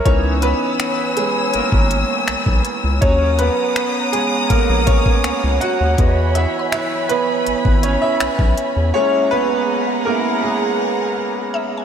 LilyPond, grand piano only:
<<
  \new Staff \with { instrumentName = "Grand piano" } { \time 4/4 \key cis \dorian \tempo 4 = 81 << { <cis' cis''>8 <b b'>4 <gis gis'>8 <ais ais'>4 r4 | cis''8 <b b'>4 <gis gis'>8 <ais ais'>8 <cis' cis''>4 <fis' fis''>8~ | <fis' fis''>8 <e' e''>8 <e' e''>8 <b b'>4 <cis' cis''>16 <e' e''>8. r8 | <cis' cis''>8 <b b'>4 ais'8 <gis gis'>4 r4 | } \\ { ais'16 r2. r8. | r1 | r1 | r1 | } >> }
  \new Staff \with { instrumentName = "Grand piano" } { \time 4/4 \key cis \dorian <e b dis'>8 r2. r8 | <fis cis' ais'>4. r2 r8 | <e b dis''>1 | <gis ais e'>8 r4 <gis ais e'>8 r2 | }
>>